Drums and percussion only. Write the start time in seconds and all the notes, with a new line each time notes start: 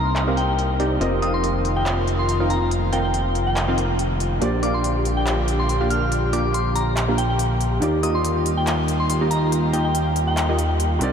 0.16 clap, closed hi-hat
0.37 closed hi-hat
0.59 closed hi-hat
0.80 closed hi-hat
1.01 closed hi-hat
1.22 closed hi-hat
1.44 closed hi-hat
1.65 closed hi-hat
1.86 clap, closed hi-hat
2.07 closed hi-hat
2.29 closed hi-hat
2.50 closed hi-hat
2.71 closed hi-hat
2.93 closed hi-hat
3.14 closed hi-hat
3.35 closed hi-hat
3.56 clap, closed hi-hat
3.78 closed hi-hat
3.99 closed hi-hat
4.20 closed hi-hat
4.42 closed hi-hat
4.63 closed hi-hat
4.84 closed hi-hat
5.05 closed hi-hat
5.27 clap, closed hi-hat
5.48 closed hi-hat
5.69 closed hi-hat
5.90 closed hi-hat
6.12 closed hi-hat
6.33 closed hi-hat
6.54 closed hi-hat
6.76 closed hi-hat
6.97 clap, closed hi-hat
7.18 closed hi-hat
7.39 closed hi-hat
7.61 closed hi-hat
7.82 closed hi-hat
8.03 closed hi-hat
8.25 closed hi-hat
8.46 closed hi-hat
8.67 clap, closed hi-hat
8.88 closed hi-hat
9.10 closed hi-hat
9.31 closed hi-hat
9.52 closed hi-hat
9.74 closed hi-hat
9.95 closed hi-hat
10.16 closed hi-hat
10.37 clap, closed hi-hat
10.59 closed hi-hat
10.80 closed hi-hat
11.01 closed hi-hat